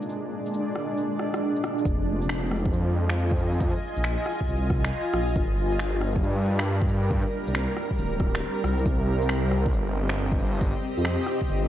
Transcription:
Already playing: ambient pad A#2 G#3 D4
0.02 shaker
0.09 shaker
0.46 shaker
0.54 shaker
0.76 cross-stick
0.97 shaker
1.19 cross-stick
1.34 cross-stick, shaker
1.56 shaker
1.64 cross-stick, shaker
1.78 shaker
1.85 detuned saw bass F1, ambient pad F4 D#5 G#5, kick, shaker
2.22 shaker
2.29 finger snap, shaker
2.51 cross-stick
2.66 kick
2.72 detuned saw bass F2, shaker
3.10 finger snap, shaker
3.31 kick
3.39 shaker
3.54 shaker
3.61 kick, shaker
3.96 detuned saw bass A#1, shaker
4.04 finger snap, shaker
4.26 cross-stick
4.41 kick
4.48 detuned saw bass C2, shaker
4.70 kick, cross-stick
4.85 finger snap, shaker
5.13 detuned saw bass A#1, cross-stick, shaker
5.29 shaker
5.35 detuned saw bass G1, ambient pad G3 D4 A#4, kick, shaker
5.72 shaker
5.79 finger snap, shaker
6.01 cross-stick
6.16 kick
6.23 detuned saw bass G2, shaker
6.59 finger snap, shaker
6.82 kick
6.88 shaker
7.03 shaker
7.10 ambient pad C4, kick, shaker
7.47 detuned saw bass C2, shaker
7.55 finger snap, shaker
7.77 cross-stick
7.91 kick
7.98 detuned saw bass D1, shaker
8.20 kick, cross-stick
8.35 finger snap, shaker
8.64 detuned saw bass C2, cross-stick, shaker
8.78 shaker
8.85 detuned saw bass C2, ambient pad C4 G4 D#5, kick, shaker
9.22 shaker
9.29 finger snap, shaker
9.51 cross-stick
9.66 kick
9.73 detuned saw bass G1, shaker
10.09 finger snap, shaker
10.32 kick
10.39 shaker
10.54 shaker
10.61 kick, shaker
10.97 detuned saw bass F2, shaker
11.05 finger snap, shaker
11.26 cross-stick
11.41 kick
11.48 detuned saw bass G1, shaker

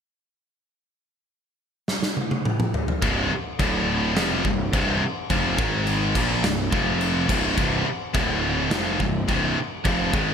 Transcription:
1.88 snare
2.02 snare
2.17 high tom
2.31 high tom
2.45 mid tom
2.60 mid tom
2.74 floor tom
2.88 floor tom
3.02 picked electric bass C1, distorted electric guitar C2 G2 C3, kick, crash
3.32 muted distorted electric guitar stroke, muted picked electric bass stroke
3.59 picked electric bass D1, distorted electric guitar D2 A2 D3, kick, crash
4.15 picked electric bass F1, distorted electric guitar F2 C3 F3, snare, crash
4.45 picked electric bass C1, distorted electric guitar C2 G2, kick
4.73 picked electric bass C1, distorted electric guitar C2 G2 C3, kick, crash
5.30 picked electric bass F1, distorted electric guitar F2 C3 F3, kick, crash
5.58 picked electric bass G#1, distorted electric guitar G#2 D#3 G#3, kick
5.87 crash
6.15 picked electric bass A#1, distorted electric guitar A#2 F3 A#3, kick, crash
6.44 picked electric bass C1, distorted electric guitar C2 G2, snare, crash
6.72 picked electric bass F1, distorted electric guitar F2 C3 F3, kick
7.01 crash
7.28 picked electric bass C1, distorted electric guitar C2 G2 C3, kick, crash
7.57 picked electric bass C1, distorted electric guitar C2 G2 C3, kick, crash
7.86 muted distorted electric guitar stroke, muted picked electric bass stroke
8.14 picked electric bass D1, distorted electric guitar D2 A2 D3, kick, crash
8.70 picked electric bass F1, distorted electric guitar F2 C3 F3, snare, crash
9.00 picked electric bass C1, distorted electric guitar C2 G2, kick
9.28 picked electric bass C1, distorted electric guitar C2 G2 C3, kick, crash
9.85 picked electric bass F1, distorted electric guitar F2 C3 F3, kick, crash
10.13 picked electric bass G#1, distorted electric guitar G#2 D#3 G#3, kick

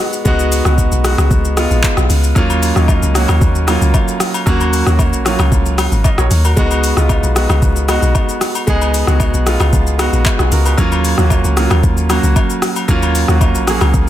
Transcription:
Already playing: grand piano G#3 B3 D#4 F#4
0.13 shaker
0.25 log drum bass C#2, grand piano G#3 B3 D#4 F#4, kick, shaker
0.39 shaker
0.52 open hi-hat, shaker
0.65 log drum bass C#2, grand piano G#3 B3 D#4 F#4, cross-stick, shaker
0.78 kick, shaker
0.92 log drum bass B1, shaker
1.04 grand piano G#3 B3 D#4 F#4, cross-stick, open hi-hat, shaker
1.18 log drum bass C#2, cross-stick, shaker
1.31 log drum bass C#2, kick, shaker
1.45 shaker
1.56 grand piano G#3 B3 D#4 F4, cross-stick, open hi-hat, shaker
1.71 log drum bass A#1, shaker
1.83 kick, clap, shaker
1.97 log drum bass B1, cross-stick, shaker
2.10 log drum bass C#2, open hi-hat, shaker
2.24 shaker
2.35 log drum bass D#2, grand piano F#3 A#3 C#4 F4, kick, shaker
2.50 high agogo, shaker
2.63 open hi-hat, shaker
2.75 log drum bass D#2, grand piano F#3 A#3 C#4 D#4, cross-stick, shaker
2.88 kick, high agogo, low woodblock, shaker
3.02 log drum bass C#2, shaker
3.14 grand piano F#3 A#3 C#4 F#4, cross-stick, open hi-hat, shaker
3.28 log drum bass D#2, cross-stick, high agogo, shaker
3.41 log drum bass D#2, kick, shaker
3.55 shaker
3.67 grand piano F#3 A#3 C#4 F4, cross-stick, open hi-hat, high agogo, shaker
3.81 log drum bass C#2, shaker
3.94 kick, high agogo, low woodblock, shaker
4.08 shaker
4.20 cross-stick, open hi-hat, shaker
4.34 high agogo, shaker
4.46 log drum bass D#2, grand piano F#3 A#3 C#4 F#4, kick, shaker
4.61 high agogo, shaker
4.73 open hi-hat, shaker
4.86 log drum bass D#2, grand piano F#3 A#3 C#4 F#4, cross-stick, shaker
4.99 kick, high agogo, low woodblock, shaker
5.13 log drum bass A#1, shaker
5.25 grand piano F#3 A#3 C#4 F4, cross-stick, open hi-hat, shaker
5.39 log drum bass C#2, cross-stick, high agogo, shaker
5.52 log drum bass C#2, kick, shaker
5.66 shaker
5.78 cross-stick, open hi-hat, high agogo, shaker
5.92 log drum bass G#1, shaker
6.04 grand piano D#5, kick, high agogo, low woodblock, shaker
6.18 log drum bass A#1, grand piano A#4 C#5, cross-stick, shaker
6.31 log drum bass D#2, open hi-hat, shaker
6.45 grand piano F#4 A#4, high agogo, shaker
6.56 log drum bass C#2, grand piano G#3 B3 D#4 F#4, kick, shaker
6.71 high agogo, shaker
6.84 open hi-hat, shaker
6.96 log drum bass C#2, grand piano G#3 B3 D#4 F4, cross-stick, shaker
7.09 kick, high agogo, low woodblock, shaker
7.23 log drum bass B1, shaker
7.35 grand piano G#3 B3 D#4 F#4, cross-stick, open hi-hat, shaker
7.49 log drum bass C#2, cross-stick, high agogo, shaker
7.62 log drum bass C#2, kick, shaker
7.76 shaker
7.88 grand piano G#3 B3 D#4 F#4, cross-stick, open hi-hat, high agogo, shaker
8.02 log drum bass B1, shaker
8.15 kick, high agogo, low woodblock, shaker
8.29 shaker
8.41 cross-stick, open hi-hat, shaker
8.55 high agogo, shaker
8.67 log drum bass C#2, grand piano G#3 B3 D#4 G#4, kick, shaker
8.82 high agogo, shaker
8.94 open hi-hat, shaker
9.07 log drum bass C#2, grand piano G#3 B3 D#4 F#4, cross-stick, shaker
9.20 kick, high agogo, low woodblock, shaker
9.34 log drum bass B1, shaker
9.46 grand piano G#3 B3 D#4 F4, cross-stick, open hi-hat, shaker
9.60 log drum bass C#2, cross-stick, high agogo, shaker
9.73 log drum bass C#2, kick, shaker
9.87 shaker
9.98 grand piano G#3 B3 D#4 F#4, cross-stick, open hi-hat, high agogo, shaker
10.13 log drum bass A#1, shaker
10.25 kick, clap, high agogo, low woodblock, shaker
10.39 log drum bass B1, grand piano F4 G#4, cross-stick, shaker
10.52 log drum bass C#2, grand piano F#4 A#4, open hi-hat, shaker
10.66 grand piano G#4 B4, high agogo, shaker
10.77 log drum bass D#2, grand piano F#3 A#3 C#4 F4, kick, shaker
10.92 high agogo, shaker
11.05 open hi-hat, shaker
11.18 log drum bass D#2, grand piano F#3 A#3 C#4 F#4, cross-stick, shaker
11.30 kick, high agogo, low woodblock, shaker
11.44 log drum bass C#2, shaker
11.56 grand piano F#3 A#3 C#4 F4, cross-stick, open hi-hat, shaker
11.70 log drum bass D#2, cross-stick, high agogo, shaker
11.83 log drum bass D#2, kick, shaker
11.97 shaker
12.09 grand piano F#3 A#3 C#4 F#4, cross-stick, open hi-hat, high agogo, shaker
12.23 log drum bass C#2, shaker
12.36 kick, high agogo, low woodblock, shaker
12.50 shaker
12.62 cross-stick, open hi-hat, shaker
12.76 high agogo, shaker
12.88 log drum bass D#2, grand piano F#3 A#3 C#4 F4, kick, shaker
13.02 high agogo, shaker
13.15 open hi-hat, shaker
13.28 log drum bass D#2, grand piano F#3 A#3 C#4 F#4, cross-stick, shaker
13.41 kick, high agogo, low woodblock, shaker
13.55 log drum bass A#1, shaker
13.67 grand piano F#3 A#3 C#4 G#4, cross-stick, open hi-hat, shaker
13.81 log drum bass C#2, cross-stick, high agogo, shaker
13.94 log drum bass C#2, kick, shaker

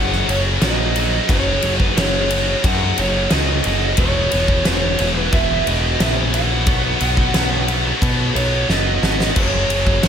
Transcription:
Already playing: picked electric bass F#1, distorted electric guitar F#2 C#3 F#3 A#3 C#4 F#4, tonewheel organ F#3 C#4 G#4, lead electric guitar F#5
0.12 snare
0.26 picked electric bass F#1, distorted electric guitar F#2 C#3 F#3 A#3 C#4 F#4, lead electric guitar C#5, ride
0.61 picked electric bass A#1, distorted electric guitar F#2 C#3 F#3 A#3 C#4 F#4, lead electric guitar D#5, snare, ride
0.94 distorted electric guitar F#2 C#3 F#3 A#3 C#4 F#4, ride
1.28 picked electric bass F#1, distorted electric guitar F#2 C#3 F#3 A#3 C#4 F#4, tonewheel organ D#4, lead electric guitar C#5, kick, ride
1.62 picked electric bass F#1, distorted electric guitar F#2 C#3 F#3 A#3 C#4 F#4, ride
1.80 lead electric guitar B4, kick
1.95 picked electric bass F#1, distorted electric guitar F#2 C#3 F#3 A#3 C#4 F#4, lead electric guitar C#5, snare, ride
2.30 distorted electric guitar F#2 C#3 F#3 A#3 C#4 F#4, ride
2.64 distorted electric guitar F#2 C#3 F#3 A#3 C#4 F#4, picked electric bass F#2, lead electric guitar F#5, kick, ride
2.97 picked electric bass F#1, distorted electric guitar F#2 C#3 F#3 A#3 C#4 F#4, lead electric guitar C#5, ride
3.30 picked electric bass C#2, distorted electric guitar F#2 C#3 F#3 A#3 C#4 F#4, lead electric guitar D#5, snare, ride
3.64 picked electric bass F#1, distorted electric guitar F#2 C#3 F#3 A#3 C#4 F#4, ride
3.97 picked electric bass E1, distorted electric guitar E2 B2 E3 G#3 B3 E4, tonewheel organ E3 B3 F#4, lead electric guitar C#5, kick, ride
4.31 picked electric bass E1, distorted electric guitar E2 B2 E3 G#3 B3 E4, ride
4.48 kick
4.65 picked electric bass E1, distorted electric guitar E2 B2 E3 G#3 B3 E4, lead electric guitar C#5, snare, ride
4.98 picked electric bass E1, distorted electric guitar E2 B2 E3 G#3 B3 E4, ride
5.18 lead electric guitar B4
5.32 picked electric bass E1, distorted electric guitar E2 B2 E3 G#3 B3 E4, lead electric guitar E5, kick, ride
5.66 picked electric bass E1, distorted electric guitar E2 B2 E3 G#3 B3 E4, lead electric guitar D#5, ride
6.00 picked electric bass A#1, distorted electric guitar E2 B2 E3 G#3 B3 E4, lead electric guitar E5, snare, ride
6.33 distorted electric guitar E2 B2 E3 G#3 B3 E4, lead electric guitar F#5, ride
6.65 picked electric bass B1, distorted electric guitar B2 F#3 B3, tonewheel organ F#4 C#5, kick, ride
6.69 distorted electric guitar D#4
7.00 picked electric bass B1, distorted electric guitar B2 F#3 B3 D#4, ride
7.17 kick
7.33 picked electric bass B1, distorted electric guitar B2 F#3 B3 D#4, snare, ride
7.68 distorted electric guitar B2 F#3 B3 D#4, ride
8.01 distorted electric guitar B2 F#3 B3 D#4, picked electric bass B2, kick, ride
8.35 picked electric bass B1, distorted electric guitar B2 F#3 B3 D#4, lead electric guitar C#5, ride
8.67 picked electric bass F#1, distorted electric guitar B2 F#3 B3 D#4, lead electric guitar D#5, snare
9.02 picked electric bass G#1, distorted electric guitar B2 F#3 B3 D#4, snare
9.20 snare
9.34 picked electric bass F#1, distorted electric guitar F#2 C#3 F#3 A#3 C#4, lead electric guitar C#5, kick, crash
9.39 tonewheel organ F#3 C#4 G#4
9.68 picked electric bass F#1, distorted electric guitar F#2 C#3 F#3 A#3 C#4, ride
9.87 kick
10.03 picked electric bass F#1, distorted electric guitar F#2 C#3 F#3 A#3 C#4, lead electric guitar C#5, snare, ride

